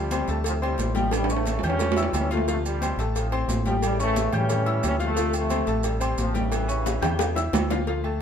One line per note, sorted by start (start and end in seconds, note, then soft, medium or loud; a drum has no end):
0.00 0.22 D2 loud
0.00 0.45 C3 medium
0.00 0.41 F3 medium
0.00 0.46 G3 loud
0.11 0.25 C4 medium
0.11 0.25 C5 medium
0.11 0.26 C6 medium
0.11 cowbell medium
0.11 high conga loud
0.11 low agogo loud
0.11 maracas medium
0.28 0.75 D2 loud
0.28 0.56 A3 medium
0.28 0.56 A4 medium
0.28 0.56 A5 medium
0.28 cowbell medium
0.28 high conga soft
0.28 maracas soft
0.44 1.09 A2 medium
0.44 0.62 C3 medium
0.44 0.54 F3 medium
0.44 cowbell loud
0.44 high conga soft
0.44 low agogo medium
0.44 maracas medium
0.62 1.10 C3 medium
0.62 0.94 G3 loud
0.62 0.90 C4 medium
0.62 0.90 C5 medium
0.62 0.90 C6 medium
0.62 high conga soft
0.62 low agogo loud
0.78 1.57 A1 loud
0.78 cowbell medium
0.78 high conga medium
0.78 low timbale medium
0.78 maracas medium
0.95 1.14 F3 medium
0.95 1.23 G3 loud
0.95 1.23 G4 loud
0.95 1.23 G5 loud
0.95 cowbell medium
0.95 high conga medium
0.95 maracas soft
1.11 1.30 C#3 medium
1.11 1.30 E3 medium
1.11 cowbell loud
1.11 high conga soft
1.11 high timbale medium
1.11 low agogo loud
1.11 maracas medium
1.16 1.31 G3 medium
1.24 high timbale loud
1.29 1.94 C#3 medium
1.29 1.64 E3 medium
1.29 1.65 A3 medium
1.29 1.57 C#4 medium
1.29 1.57 C#5 medium
1.29 1.58 C#6 medium
1.29 high conga soft
1.29 maracas medium
1.36 high timbale medium
1.46 cowbell medium
1.46 high conga loud
1.46 low agogo medium
1.46 maracas medium
1.59 2.10 E2 medium
1.59 low timbale medium
1.63 2.28 E3 medium
1.63 2.28 G3 medium
1.63 2.11 C#4 loud
1.63 1.91 G4 medium
1.63 1.91 G5 medium
1.63 1.91 G6 medium
1.63 cowbell medium
1.63 high conga soft
1.63 low conga medium
1.63 low agogo loud
1.63 maracas soft
1.70 high timbale medium
1.79 cowbell loud
1.79 low timbale loud
1.79 low agogo medium
1.79 maracas medium
1.92 low timbale loud
1.96 2.24 E4 medium
1.96 2.24 E5 medium
1.96 2.24 E6 medium
1.96 cowbell medium
1.96 low agogo medium
1.96 maracas medium
2.03 low timbale loud
2.13 2.92 D2 medium
2.13 2.31 C#4 loud
2.13 cowbell medium
2.13 high conga medium
2.13 low timbale medium
2.13 low agogo loud
2.13 maracas medium
2.30 2.44 F3 medium
2.30 2.48 A3 medium
2.30 2.44 F4 medium
2.30 2.45 F5 medium
2.30 cowbell medium
2.30 high conga medium
2.30 maracas soft
2.37 low timbale medium
2.48 2.65 C3 medium
2.48 2.75 F3 medium
2.48 3.00 F3 medium
2.48 2.56 A3 medium
2.48 2.76 F4 medium
2.48 2.76 F5 medium
2.48 cowbell loud
2.48 high conga soft
2.48 maracas medium
2.66 3.02 C3 medium
2.66 3.04 G3 loud
2.66 high conga soft
2.66 low agogo medium
2.66 maracas medium
2.81 2.95 C4 medium
2.81 2.95 C5 medium
2.81 2.96 C6 medium
2.81 cowbell medium
2.81 high conga medium
2.81 low agogo loud
2.81 maracas medium
2.97 3.45 A1 loud
2.97 3.26 A3 medium
2.97 3.27 A4 medium
2.97 3.26 A5 medium
2.97 cowbell medium
2.97 high conga soft
2.97 maracas soft
3.16 3.80 A2 medium
3.16 3.80 C3 medium
3.16 3.33 F3 medium
3.16 cowbell loud
3.16 high conga soft
3.16 low agogo medium
3.16 maracas medium
3.32 3.60 C4 medium
3.32 3.60 C5 medium
3.32 3.60 C6 medium
3.32 high conga soft
3.32 low agogo loud
3.48 4.27 A1 medium
3.48 cowbell medium
3.48 high conga medium
3.48 low timbale medium
3.48 maracas medium
3.66 3.75 F3 loud
3.66 3.93 G3 medium
3.66 3.94 G4 medium
3.66 3.94 G5 loud
3.66 cowbell medium
3.66 high conga medium
3.66 maracas soft
3.82 4.01 C#3 medium
3.82 4.01 E3 medium
3.82 4.00 G3 loud
3.82 cowbell loud
3.82 high conga soft
3.82 low agogo loud
3.82 maracas medium
3.99 4.64 C#3 medium
3.99 4.34 E3 medium
3.99 4.32 A3 loud
3.99 4.27 C#4 medium
3.99 4.27 C#5 medium
3.99 4.27 C#6 medium
3.99 high conga soft
3.99 maracas medium
4.16 cowbell medium
4.16 high conga loud
4.16 low agogo medium
4.16 maracas medium
4.33 4.80 A2 loud
4.33 4.98 E3 medium
4.33 4.98 G3 medium
4.33 4.85 C#4 loud
4.33 4.61 G4 medium
4.33 4.61 G5 medium
4.33 4.61 G6 medium
4.33 cowbell medium
4.33 high conga soft
4.33 low conga medium
4.33 low agogo loud
4.33 maracas soft
4.49 cowbell loud
4.49 high conga soft
4.49 low conga medium
4.49 low agogo medium
4.49 maracas medium
4.66 4.94 E4 medium
4.66 4.94 E5 medium
4.66 4.94 E6 medium
4.66 cowbell medium
4.66 low agogo medium
4.83 5.62 D2 medium
4.83 4.93 C#4 loud
4.83 cowbell medium
4.83 high conga medium
4.83 low timbale medium
4.83 low agogo loud
4.83 maracas medium
4.99 5.14 F3 medium
4.99 5.14 F4 medium
4.99 5.14 F5 loud
4.99 cowbell medium
4.99 high conga medium
4.99 maracas soft
5.04 5.35 C3 medium
5.04 5.35 F3 medium
5.04 5.34 A3 loud
5.16 5.44 F3 medium
5.16 5.44 F4 medium
5.16 5.44 F5 medium
5.16 cowbell loud
5.16 high conga soft
5.16 maracas medium
5.33 5.86 C3 medium
5.33 5.99 F3 medium
5.33 5.83 A3 loud
5.33 high conga soft
5.33 low agogo medium
5.33 maracas medium
5.50 5.64 C4 medium
5.50 5.64 C5 medium
5.50 5.64 C6 medium
5.50 cowbell medium
5.50 high conga loud
5.50 low agogo loud
5.50 maracas medium
5.67 6.15 A1 loud
5.67 5.95 A3 medium
5.67 5.95 A4 medium
5.67 5.95 A5 medium
5.67 cowbell medium
5.67 high conga soft
5.67 maracas soft
5.83 cowbell loud
5.83 high conga soft
5.83 low agogo medium
5.83 maracas medium
5.87 6.50 C3 medium
5.87 6.20 G3 medium
6.00 6.29 C4 medium
6.00 6.29 C5 medium
6.00 6.29 C6 medium
6.00 high conga soft
6.00 low agogo loud
6.00 maracas medium
6.18 6.97 A1 loud
6.18 6.36 F3 loud
6.18 cowbell medium
6.18 high conga medium
6.18 maracas medium
6.34 7.50 G2 medium
6.34 7.50 C#3 medium
6.34 7.50 E3 medium
6.34 6.62 G3 medium
6.34 6.62 G4 loud
6.34 6.63 G5 loud
6.34 cowbell medium
6.34 high conga medium
6.34 maracas soft
6.52 cowbell loud
6.52 high conga soft
6.52 low agogo loud
6.52 maracas medium
6.68 6.96 C#4 medium
6.68 6.97 C#5 medium
6.68 6.96 C#6 medium
6.68 high conga soft
6.68 maracas medium
6.86 cowbell medium
6.86 high bongo medium
6.86 high conga loud
6.86 low agogo medium
6.86 maracas medium
7.01 7.50 E2 loud
7.01 7.30 G4 medium
7.01 7.30 G5 medium
7.01 7.30 G6 medium
7.01 cowbell medium
7.01 high bongo loud
7.01 high conga soft
7.01 low conga medium
7.01 high timbale medium
7.01 low agogo loud
7.01 maracas soft
7.19 cowbell loud
7.19 high bongo loud
7.19 high conga soft
7.19 low timbale medium
7.19 low agogo medium
7.19 maracas medium
7.35 7.64 E4 medium
7.35 7.64 E5 medium
7.35 7.64 E6 medium
7.35 cowbell medium
7.35 low bongo medium
7.35 low agogo medium
7.35 maracas medium
7.53 8.22 D2 loud
7.53 cowbell medium
7.53 low bongo loud
7.53 high conga medium
7.53 low timbale loud
7.53 low agogo loud
7.53 maracas medium
7.70 7.84 F3 medium
7.70 7.84 F4 medium
7.70 7.85 F5 medium
7.70 cowbell medium
7.70 low bongo loud
7.70 high conga medium
7.70 low timbale medium
7.70 maracas soft
7.87 8.01 F3 medium
7.87 8.01 F4 medium
7.87 8.02 F5 medium
7.87 cowbell loud
7.87 high conga soft
8.04 8.22 A3 medium
8.04 8.22 A4 medium
8.04 8.22 A5 medium
8.04 high conga soft
8.04 low agogo medium